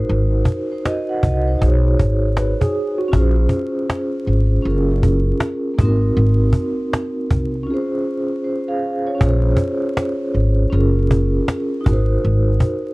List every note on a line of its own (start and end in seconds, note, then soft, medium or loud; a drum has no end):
0.00 0.43 D#4 medium
0.00 0.45 F#4 medium
0.00 0.47 A#4 medium
0.00 0.48 C5 medium
0.09 0.42 G#1 loud
0.09 cajon slap soft
0.45 cajon bass medium
0.72 0.85 D#4 soft
0.72 0.85 C5 medium
0.85 1.08 F#4 medium
0.85 1.08 D#5 medium
0.85 cajon slap loud
1.09 1.22 F#5 medium
1.23 1.56 C2 medium
1.23 1.46 F#4 medium
1.23 1.46 D#5 medium
1.23 cajon bass medium
1.48 1.55 D#4 medium
1.48 1.83 C5 medium
1.56 3.07 D#4 medium
1.56 3.09 F#4 medium
1.62 1.94 B1 loud
1.62 3.11 G#4 medium
1.62 cajon bass medium
1.67 3.13 C#5 medium
1.88 cajon slap soft
1.99 2.52 G#1 medium
1.99 cajon bass medium
2.37 2.60 B4 medium
2.37 cajon slap loud
2.61 2.97 G#4 medium
2.61 cajon bass medium
2.75 cajon slap soft
2.98 3.35 F#4 medium
3.08 4.59 C#4 medium
3.08 4.61 F4 medium
3.13 3.46 A#1 medium
3.13 4.63 G#4 medium
3.13 cajon bass loud
3.19 4.65 C5 medium
3.49 cajon bass medium
3.90 cajon slap loud
4.26 4.60 G#1 medium
4.26 cajon slap soft
4.63 5.30 F#1 loud
4.63 5.78 C#4 medium
4.63 5.78 F4 medium
4.63 5.79 G#4 medium
4.63 cajon slap soft
4.68 5.80 A#4 medium
4.92 cajon slap soft
5.03 cajon bass medium
5.40 cajon slap loud
5.74 5.85 A#3 medium
5.74 7.64 D#4 medium
5.78 6.11 G#1 loud
5.78 7.66 C4 medium
5.78 7.66 F#4 medium
5.78 cajon bass medium
5.85 7.68 A#4 medium
6.17 6.49 G#1 loud
6.17 cajon slap soft
6.53 cajon bass medium
6.93 cajon slap loud
7.30 7.63 C2 medium
7.30 cajon bass medium
7.55 cajon slap soft
7.63 9.14 C#4 medium
7.63 8.42 F4 medium
7.70 8.44 G#4 medium
7.70 8.43 C5 medium
8.44 8.67 C5 medium
8.68 9.05 G#4 medium
8.68 9.04 F5 medium
9.07 9.17 F4 soft
9.07 9.43 C#5 medium
9.15 10.66 C#4 medium
9.15 10.68 F4 medium
9.21 9.53 A#1 loud
9.21 10.70 G#4 medium
9.21 cajon bass loud
9.26 10.72 C5 medium
9.57 cajon bass medium
9.97 cajon slap loud
10.34 10.67 G#1 medium
10.34 cajon slap soft
10.70 11.38 F#1 loud
10.70 11.85 C#4 medium
10.70 11.86 F4 medium
10.70 11.87 G#4 medium
10.70 cajon slap soft
10.76 11.87 A#4 medium
10.99 cajon slap soft
11.11 cajon bass medium
11.48 cajon slap loud
11.81 12.94 D#4 medium
11.81 12.94 F#4 medium
11.86 12.19 G#1 medium
11.86 12.94 A#4 medium
11.86 cajon bass loud
11.92 12.94 C5 medium
12.25 12.57 G#1 loud
12.25 cajon slap soft
12.60 cajon bass medium